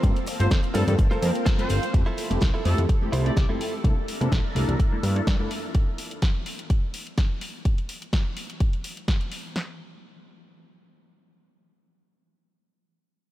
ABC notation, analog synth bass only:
X:1
M:4/4
L:1/16
Q:"Swing 16ths" 1/4=126
K:F
V:1 name="Analog synth bass" clef=bass
G,, z2 G,,, F,, z G,, G,, G,,, z F,, z3 G,,, z | F,, z2 F,,, C,, z F,, F,, z2 C,, z C,, z3 | C,, z2 C, B,,, z C,, C,, z2 G,, z G,, z3 | z16 |
z16 | z16 | z16 |]